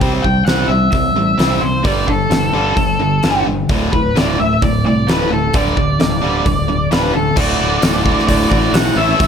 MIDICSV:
0, 0, Header, 1, 7, 480
1, 0, Start_track
1, 0, Tempo, 459067
1, 20, Time_signature, 4, 2, 24, 8
1, 9696, End_track
2, 0, Start_track
2, 0, Title_t, "Lead electric guitar"
2, 0, Program_c, 0, 29
2, 238, Note_on_c, 0, 79, 90
2, 467, Note_off_c, 0, 79, 0
2, 471, Note_on_c, 0, 78, 88
2, 707, Note_off_c, 0, 78, 0
2, 711, Note_on_c, 0, 76, 90
2, 948, Note_off_c, 0, 76, 0
2, 960, Note_on_c, 0, 76, 86
2, 1686, Note_on_c, 0, 72, 83
2, 1713, Note_off_c, 0, 76, 0
2, 1927, Note_off_c, 0, 72, 0
2, 1931, Note_on_c, 0, 74, 89
2, 2168, Note_on_c, 0, 69, 69
2, 2184, Note_off_c, 0, 74, 0
2, 3575, Note_off_c, 0, 69, 0
2, 4102, Note_on_c, 0, 71, 77
2, 4350, Note_off_c, 0, 71, 0
2, 4371, Note_on_c, 0, 74, 91
2, 4594, Note_off_c, 0, 74, 0
2, 4598, Note_on_c, 0, 76, 94
2, 4836, Note_off_c, 0, 76, 0
2, 4840, Note_on_c, 0, 74, 94
2, 5068, Note_off_c, 0, 74, 0
2, 5081, Note_on_c, 0, 74, 89
2, 5320, Note_off_c, 0, 74, 0
2, 5325, Note_on_c, 0, 71, 73
2, 5560, Note_off_c, 0, 71, 0
2, 5564, Note_on_c, 0, 69, 82
2, 5802, Note_off_c, 0, 69, 0
2, 5805, Note_on_c, 0, 74, 81
2, 7194, Note_off_c, 0, 74, 0
2, 7234, Note_on_c, 0, 71, 77
2, 7472, Note_off_c, 0, 71, 0
2, 7476, Note_on_c, 0, 69, 71
2, 7707, Note_on_c, 0, 74, 88
2, 7718, Note_off_c, 0, 69, 0
2, 8623, Note_off_c, 0, 74, 0
2, 8649, Note_on_c, 0, 74, 84
2, 8869, Note_off_c, 0, 74, 0
2, 8882, Note_on_c, 0, 74, 89
2, 9136, Note_on_c, 0, 78, 91
2, 9140, Note_off_c, 0, 74, 0
2, 9380, Note_on_c, 0, 76, 103
2, 9386, Note_off_c, 0, 78, 0
2, 9696, Note_off_c, 0, 76, 0
2, 9696, End_track
3, 0, Start_track
3, 0, Title_t, "Overdriven electric guitar"
3, 0, Program_c, 1, 29
3, 0, Note_on_c, 1, 67, 85
3, 126, Note_off_c, 1, 67, 0
3, 9696, End_track
4, 0, Start_track
4, 0, Title_t, "Distorted electric guitar"
4, 0, Program_c, 2, 30
4, 6, Note_on_c, 2, 48, 73
4, 17, Note_on_c, 2, 55, 77
4, 19, Note_on_c, 2, 60, 86
4, 239, Note_off_c, 2, 48, 0
4, 244, Note_off_c, 2, 55, 0
4, 245, Note_off_c, 2, 60, 0
4, 259, Note_on_c, 2, 48, 63
4, 259, Note_on_c, 2, 55, 69
4, 476, Note_off_c, 2, 48, 0
4, 476, Note_off_c, 2, 55, 0
4, 503, Note_on_c, 2, 48, 68
4, 505, Note_on_c, 2, 55, 86
4, 513, Note_on_c, 2, 60, 81
4, 727, Note_off_c, 2, 48, 0
4, 729, Note_off_c, 2, 55, 0
4, 733, Note_off_c, 2, 60, 0
4, 746, Note_on_c, 2, 48, 63
4, 748, Note_on_c, 2, 55, 65
4, 960, Note_off_c, 2, 48, 0
4, 961, Note_off_c, 2, 55, 0
4, 982, Note_on_c, 2, 48, 62
4, 988, Note_on_c, 2, 55, 77
4, 1198, Note_off_c, 2, 48, 0
4, 1201, Note_off_c, 2, 55, 0
4, 1210, Note_on_c, 2, 48, 58
4, 1212, Note_on_c, 2, 55, 72
4, 1429, Note_off_c, 2, 48, 0
4, 1433, Note_off_c, 2, 55, 0
4, 1442, Note_on_c, 2, 48, 86
4, 1452, Note_on_c, 2, 55, 77
4, 1455, Note_on_c, 2, 60, 89
4, 1667, Note_off_c, 2, 48, 0
4, 1675, Note_off_c, 2, 55, 0
4, 1679, Note_on_c, 2, 48, 61
4, 1684, Note_off_c, 2, 60, 0
4, 1687, Note_on_c, 2, 55, 69
4, 1906, Note_off_c, 2, 48, 0
4, 1910, Note_off_c, 2, 55, 0
4, 1910, Note_on_c, 2, 43, 92
4, 1914, Note_on_c, 2, 50, 93
4, 1925, Note_on_c, 2, 55, 86
4, 2149, Note_off_c, 2, 43, 0
4, 2154, Note_off_c, 2, 50, 0
4, 2159, Note_off_c, 2, 55, 0
4, 2162, Note_on_c, 2, 43, 60
4, 2172, Note_on_c, 2, 50, 63
4, 2388, Note_off_c, 2, 43, 0
4, 2393, Note_off_c, 2, 50, 0
4, 2403, Note_on_c, 2, 43, 72
4, 2407, Note_on_c, 2, 50, 63
4, 2629, Note_off_c, 2, 43, 0
4, 2631, Note_off_c, 2, 50, 0
4, 2640, Note_on_c, 2, 43, 77
4, 2646, Note_on_c, 2, 50, 80
4, 2654, Note_on_c, 2, 55, 95
4, 2864, Note_off_c, 2, 43, 0
4, 2877, Note_off_c, 2, 50, 0
4, 2877, Note_on_c, 2, 43, 61
4, 2884, Note_off_c, 2, 55, 0
4, 2890, Note_on_c, 2, 50, 77
4, 3106, Note_off_c, 2, 43, 0
4, 3112, Note_off_c, 2, 50, 0
4, 3134, Note_on_c, 2, 43, 70
4, 3143, Note_on_c, 2, 50, 73
4, 3355, Note_off_c, 2, 43, 0
4, 3359, Note_off_c, 2, 50, 0
4, 3381, Note_on_c, 2, 43, 76
4, 3385, Note_on_c, 2, 50, 83
4, 3397, Note_on_c, 2, 55, 91
4, 3608, Note_off_c, 2, 43, 0
4, 3610, Note_off_c, 2, 50, 0
4, 3616, Note_off_c, 2, 55, 0
4, 3622, Note_on_c, 2, 43, 64
4, 3622, Note_on_c, 2, 50, 66
4, 3839, Note_off_c, 2, 43, 0
4, 3839, Note_off_c, 2, 50, 0
4, 3862, Note_on_c, 2, 38, 80
4, 3871, Note_on_c, 2, 45, 83
4, 3876, Note_on_c, 2, 50, 88
4, 4082, Note_off_c, 2, 38, 0
4, 4089, Note_off_c, 2, 45, 0
4, 4094, Note_on_c, 2, 38, 60
4, 4096, Note_off_c, 2, 50, 0
4, 4102, Note_on_c, 2, 45, 67
4, 4315, Note_off_c, 2, 38, 0
4, 4319, Note_off_c, 2, 45, 0
4, 4346, Note_on_c, 2, 38, 75
4, 4356, Note_on_c, 2, 45, 80
4, 4364, Note_on_c, 2, 50, 87
4, 4571, Note_off_c, 2, 38, 0
4, 4576, Note_off_c, 2, 45, 0
4, 4580, Note_off_c, 2, 50, 0
4, 4599, Note_on_c, 2, 38, 69
4, 4600, Note_on_c, 2, 45, 65
4, 4808, Note_off_c, 2, 38, 0
4, 4809, Note_off_c, 2, 45, 0
4, 4829, Note_on_c, 2, 38, 65
4, 4837, Note_on_c, 2, 45, 80
4, 5043, Note_off_c, 2, 38, 0
4, 5047, Note_off_c, 2, 45, 0
4, 5064, Note_on_c, 2, 38, 60
4, 5069, Note_on_c, 2, 45, 71
4, 5281, Note_off_c, 2, 38, 0
4, 5283, Note_off_c, 2, 45, 0
4, 5298, Note_on_c, 2, 38, 86
4, 5311, Note_on_c, 2, 45, 94
4, 5312, Note_on_c, 2, 50, 91
4, 5528, Note_off_c, 2, 38, 0
4, 5534, Note_off_c, 2, 45, 0
4, 5534, Note_off_c, 2, 50, 0
4, 5550, Note_on_c, 2, 38, 67
4, 5560, Note_on_c, 2, 45, 67
4, 5764, Note_off_c, 2, 38, 0
4, 5769, Note_off_c, 2, 45, 0
4, 5791, Note_on_c, 2, 43, 83
4, 5797, Note_on_c, 2, 50, 77
4, 5800, Note_on_c, 2, 55, 83
4, 6014, Note_off_c, 2, 43, 0
4, 6017, Note_off_c, 2, 50, 0
4, 6019, Note_off_c, 2, 55, 0
4, 6027, Note_on_c, 2, 43, 62
4, 6035, Note_on_c, 2, 50, 63
4, 6242, Note_off_c, 2, 43, 0
4, 6246, Note_off_c, 2, 50, 0
4, 6266, Note_on_c, 2, 43, 59
4, 6270, Note_on_c, 2, 50, 63
4, 6482, Note_off_c, 2, 43, 0
4, 6484, Note_off_c, 2, 50, 0
4, 6503, Note_on_c, 2, 43, 79
4, 6512, Note_on_c, 2, 50, 85
4, 6523, Note_on_c, 2, 55, 93
4, 6730, Note_off_c, 2, 43, 0
4, 6734, Note_off_c, 2, 50, 0
4, 6740, Note_off_c, 2, 55, 0
4, 6748, Note_on_c, 2, 43, 68
4, 6753, Note_on_c, 2, 50, 70
4, 6963, Note_off_c, 2, 43, 0
4, 6965, Note_off_c, 2, 50, 0
4, 6985, Note_on_c, 2, 43, 69
4, 6988, Note_on_c, 2, 50, 64
4, 7201, Note_off_c, 2, 43, 0
4, 7203, Note_off_c, 2, 50, 0
4, 7232, Note_on_c, 2, 43, 89
4, 7239, Note_on_c, 2, 50, 78
4, 7240, Note_on_c, 2, 55, 90
4, 7449, Note_off_c, 2, 43, 0
4, 7452, Note_off_c, 2, 50, 0
4, 7458, Note_off_c, 2, 55, 0
4, 7462, Note_on_c, 2, 43, 59
4, 7464, Note_on_c, 2, 50, 70
4, 7680, Note_off_c, 2, 43, 0
4, 7681, Note_off_c, 2, 50, 0
4, 7703, Note_on_c, 2, 38, 80
4, 7720, Note_on_c, 2, 45, 88
4, 7725, Note_on_c, 2, 50, 88
4, 7737, Note_on_c, 2, 57, 94
4, 7742, Note_on_c, 2, 66, 97
4, 7939, Note_off_c, 2, 66, 0
4, 7952, Note_on_c, 2, 66, 73
4, 7964, Note_off_c, 2, 57, 0
4, 7966, Note_off_c, 2, 50, 0
4, 7968, Note_on_c, 2, 57, 70
4, 7979, Note_on_c, 2, 50, 60
4, 8172, Note_off_c, 2, 45, 0
4, 8184, Note_off_c, 2, 38, 0
4, 8185, Note_off_c, 2, 50, 0
4, 8185, Note_on_c, 2, 45, 70
4, 8198, Note_on_c, 2, 50, 83
4, 8201, Note_off_c, 2, 66, 0
4, 8205, Note_off_c, 2, 57, 0
4, 8209, Note_on_c, 2, 57, 73
4, 8213, Note_on_c, 2, 66, 80
4, 8872, Note_off_c, 2, 66, 0
4, 8885, Note_on_c, 2, 66, 75
4, 8902, Note_off_c, 2, 50, 0
4, 8902, Note_off_c, 2, 57, 0
4, 8906, Note_on_c, 2, 57, 68
4, 8914, Note_on_c, 2, 50, 55
4, 9128, Note_off_c, 2, 45, 0
4, 9132, Note_off_c, 2, 50, 0
4, 9133, Note_on_c, 2, 38, 95
4, 9140, Note_on_c, 2, 45, 94
4, 9145, Note_on_c, 2, 50, 89
4, 9147, Note_off_c, 2, 57, 0
4, 9148, Note_off_c, 2, 66, 0
4, 9151, Note_on_c, 2, 57, 97
4, 9160, Note_on_c, 2, 66, 92
4, 9363, Note_off_c, 2, 38, 0
4, 9367, Note_off_c, 2, 45, 0
4, 9369, Note_off_c, 2, 50, 0
4, 9371, Note_off_c, 2, 66, 0
4, 9375, Note_on_c, 2, 69, 92
4, 9380, Note_on_c, 2, 64, 81
4, 9381, Note_off_c, 2, 57, 0
4, 9385, Note_on_c, 2, 61, 84
4, 9394, Note_on_c, 2, 52, 78
4, 9394, Note_on_c, 2, 57, 76
4, 9403, Note_on_c, 2, 45, 65
4, 9606, Note_off_c, 2, 45, 0
4, 9607, Note_off_c, 2, 52, 0
4, 9610, Note_on_c, 2, 45, 86
4, 9619, Note_off_c, 2, 61, 0
4, 9619, Note_on_c, 2, 52, 94
4, 9623, Note_off_c, 2, 57, 0
4, 9624, Note_off_c, 2, 64, 0
4, 9627, Note_on_c, 2, 57, 102
4, 9631, Note_on_c, 2, 61, 104
4, 9637, Note_on_c, 2, 64, 94
4, 9639, Note_off_c, 2, 69, 0
4, 9644, Note_on_c, 2, 69, 93
4, 9696, Note_off_c, 2, 45, 0
4, 9696, Note_off_c, 2, 52, 0
4, 9696, Note_off_c, 2, 57, 0
4, 9696, Note_off_c, 2, 61, 0
4, 9696, Note_off_c, 2, 64, 0
4, 9696, Note_off_c, 2, 69, 0
4, 9696, End_track
5, 0, Start_track
5, 0, Title_t, "Distorted electric guitar"
5, 0, Program_c, 3, 30
5, 9359, Note_on_c, 3, 45, 98
5, 9696, Note_off_c, 3, 45, 0
5, 9696, End_track
6, 0, Start_track
6, 0, Title_t, "Fingered electric bass"
6, 0, Program_c, 4, 33
6, 12, Note_on_c, 4, 36, 83
6, 246, Note_off_c, 4, 36, 0
6, 256, Note_on_c, 4, 36, 78
6, 481, Note_off_c, 4, 36, 0
6, 487, Note_on_c, 4, 36, 67
6, 707, Note_off_c, 4, 36, 0
6, 713, Note_on_c, 4, 36, 80
6, 957, Note_off_c, 4, 36, 0
6, 967, Note_on_c, 4, 36, 81
6, 1191, Note_off_c, 4, 36, 0
6, 1198, Note_on_c, 4, 33, 84
6, 1439, Note_off_c, 4, 33, 0
6, 1450, Note_on_c, 4, 36, 76
6, 1686, Note_off_c, 4, 36, 0
6, 1698, Note_on_c, 4, 36, 77
6, 1925, Note_off_c, 4, 36, 0
6, 1931, Note_on_c, 4, 31, 87
6, 2167, Note_off_c, 4, 31, 0
6, 2179, Note_on_c, 4, 31, 73
6, 2406, Note_off_c, 4, 31, 0
6, 2412, Note_on_c, 4, 31, 76
6, 2647, Note_off_c, 4, 31, 0
6, 2656, Note_on_c, 4, 31, 81
6, 2890, Note_off_c, 4, 31, 0
6, 2897, Note_on_c, 4, 31, 90
6, 3361, Note_off_c, 4, 31, 0
6, 3395, Note_on_c, 4, 31, 88
6, 3620, Note_off_c, 4, 31, 0
6, 3630, Note_on_c, 4, 31, 80
6, 3858, Note_off_c, 4, 31, 0
6, 3862, Note_on_c, 4, 26, 90
6, 4093, Note_off_c, 4, 26, 0
6, 4112, Note_on_c, 4, 26, 84
6, 4338, Note_off_c, 4, 26, 0
6, 4367, Note_on_c, 4, 26, 75
6, 4586, Note_off_c, 4, 26, 0
6, 4606, Note_on_c, 4, 26, 87
6, 4826, Note_off_c, 4, 26, 0
6, 4835, Note_on_c, 4, 26, 90
6, 5060, Note_off_c, 4, 26, 0
6, 5077, Note_on_c, 4, 36, 86
6, 5302, Note_off_c, 4, 36, 0
6, 5318, Note_on_c, 4, 26, 82
6, 5542, Note_off_c, 4, 26, 0
6, 5548, Note_on_c, 4, 26, 75
6, 5777, Note_off_c, 4, 26, 0
6, 5796, Note_on_c, 4, 26, 83
6, 6021, Note_off_c, 4, 26, 0
6, 6035, Note_on_c, 4, 26, 77
6, 6261, Note_off_c, 4, 26, 0
6, 6285, Note_on_c, 4, 26, 72
6, 6506, Note_off_c, 4, 26, 0
6, 6522, Note_on_c, 4, 26, 79
6, 6745, Note_off_c, 4, 26, 0
6, 6753, Note_on_c, 4, 26, 86
6, 7210, Note_off_c, 4, 26, 0
6, 7235, Note_on_c, 4, 26, 80
6, 7460, Note_off_c, 4, 26, 0
6, 7476, Note_on_c, 4, 26, 74
6, 7697, Note_off_c, 4, 26, 0
6, 7703, Note_on_c, 4, 26, 91
6, 7873, Note_off_c, 4, 26, 0
6, 7959, Note_on_c, 4, 26, 85
6, 8123, Note_off_c, 4, 26, 0
6, 8184, Note_on_c, 4, 26, 74
6, 8521, Note_off_c, 4, 26, 0
6, 8669, Note_on_c, 4, 26, 96
6, 8836, Note_off_c, 4, 26, 0
6, 8902, Note_on_c, 4, 33, 94
6, 9071, Note_off_c, 4, 33, 0
6, 9124, Note_on_c, 4, 35, 89
6, 9299, Note_off_c, 4, 35, 0
6, 9371, Note_on_c, 4, 33, 93
6, 9544, Note_off_c, 4, 33, 0
6, 9623, Note_on_c, 4, 33, 98
6, 9696, Note_off_c, 4, 33, 0
6, 9696, End_track
7, 0, Start_track
7, 0, Title_t, "Drums"
7, 14, Note_on_c, 9, 46, 45
7, 15, Note_on_c, 9, 36, 97
7, 118, Note_off_c, 9, 46, 0
7, 120, Note_off_c, 9, 36, 0
7, 255, Note_on_c, 9, 36, 71
7, 360, Note_off_c, 9, 36, 0
7, 488, Note_on_c, 9, 46, 45
7, 498, Note_on_c, 9, 38, 91
7, 592, Note_off_c, 9, 46, 0
7, 603, Note_off_c, 9, 38, 0
7, 961, Note_on_c, 9, 46, 49
7, 971, Note_on_c, 9, 36, 102
7, 1065, Note_off_c, 9, 46, 0
7, 1076, Note_off_c, 9, 36, 0
7, 1456, Note_on_c, 9, 46, 48
7, 1466, Note_on_c, 9, 38, 103
7, 1560, Note_off_c, 9, 46, 0
7, 1571, Note_off_c, 9, 38, 0
7, 1929, Note_on_c, 9, 46, 47
7, 1933, Note_on_c, 9, 36, 101
7, 2034, Note_off_c, 9, 46, 0
7, 2038, Note_off_c, 9, 36, 0
7, 2175, Note_on_c, 9, 36, 69
7, 2279, Note_off_c, 9, 36, 0
7, 2415, Note_on_c, 9, 46, 50
7, 2426, Note_on_c, 9, 38, 90
7, 2520, Note_off_c, 9, 46, 0
7, 2530, Note_off_c, 9, 38, 0
7, 2895, Note_on_c, 9, 36, 90
7, 2895, Note_on_c, 9, 46, 45
7, 2999, Note_off_c, 9, 36, 0
7, 3000, Note_off_c, 9, 46, 0
7, 3375, Note_on_c, 9, 46, 45
7, 3385, Note_on_c, 9, 38, 95
7, 3479, Note_off_c, 9, 46, 0
7, 3490, Note_off_c, 9, 38, 0
7, 3859, Note_on_c, 9, 46, 43
7, 3863, Note_on_c, 9, 36, 100
7, 3964, Note_off_c, 9, 46, 0
7, 3968, Note_off_c, 9, 36, 0
7, 4108, Note_on_c, 9, 36, 76
7, 4213, Note_off_c, 9, 36, 0
7, 4353, Note_on_c, 9, 46, 44
7, 4364, Note_on_c, 9, 38, 99
7, 4458, Note_off_c, 9, 46, 0
7, 4468, Note_off_c, 9, 38, 0
7, 4834, Note_on_c, 9, 36, 102
7, 4834, Note_on_c, 9, 46, 44
7, 4938, Note_off_c, 9, 46, 0
7, 4939, Note_off_c, 9, 36, 0
7, 5317, Note_on_c, 9, 46, 49
7, 5327, Note_on_c, 9, 38, 108
7, 5421, Note_off_c, 9, 46, 0
7, 5432, Note_off_c, 9, 38, 0
7, 5788, Note_on_c, 9, 46, 51
7, 5795, Note_on_c, 9, 36, 104
7, 5893, Note_off_c, 9, 46, 0
7, 5899, Note_off_c, 9, 36, 0
7, 6034, Note_on_c, 9, 36, 76
7, 6139, Note_off_c, 9, 36, 0
7, 6273, Note_on_c, 9, 46, 48
7, 6283, Note_on_c, 9, 38, 96
7, 6377, Note_off_c, 9, 46, 0
7, 6388, Note_off_c, 9, 38, 0
7, 6754, Note_on_c, 9, 36, 97
7, 6755, Note_on_c, 9, 46, 46
7, 6858, Note_off_c, 9, 36, 0
7, 6860, Note_off_c, 9, 46, 0
7, 7233, Note_on_c, 9, 46, 46
7, 7244, Note_on_c, 9, 38, 107
7, 7338, Note_off_c, 9, 46, 0
7, 7348, Note_off_c, 9, 38, 0
7, 7700, Note_on_c, 9, 49, 113
7, 7705, Note_on_c, 9, 36, 115
7, 7805, Note_off_c, 9, 49, 0
7, 7810, Note_off_c, 9, 36, 0
7, 8178, Note_on_c, 9, 46, 56
7, 8180, Note_on_c, 9, 54, 112
7, 8189, Note_on_c, 9, 38, 105
7, 8283, Note_off_c, 9, 46, 0
7, 8284, Note_off_c, 9, 54, 0
7, 8293, Note_off_c, 9, 38, 0
7, 8424, Note_on_c, 9, 36, 87
7, 8528, Note_off_c, 9, 36, 0
7, 8561, Note_on_c, 9, 38, 33
7, 8664, Note_on_c, 9, 36, 78
7, 8665, Note_on_c, 9, 46, 60
7, 8666, Note_off_c, 9, 38, 0
7, 8768, Note_off_c, 9, 36, 0
7, 8770, Note_off_c, 9, 46, 0
7, 8903, Note_on_c, 9, 36, 84
7, 9008, Note_off_c, 9, 36, 0
7, 9135, Note_on_c, 9, 54, 101
7, 9142, Note_on_c, 9, 46, 61
7, 9152, Note_on_c, 9, 38, 113
7, 9240, Note_off_c, 9, 54, 0
7, 9246, Note_off_c, 9, 46, 0
7, 9257, Note_off_c, 9, 38, 0
7, 9620, Note_on_c, 9, 36, 111
7, 9622, Note_on_c, 9, 46, 64
7, 9696, Note_off_c, 9, 36, 0
7, 9696, Note_off_c, 9, 46, 0
7, 9696, End_track
0, 0, End_of_file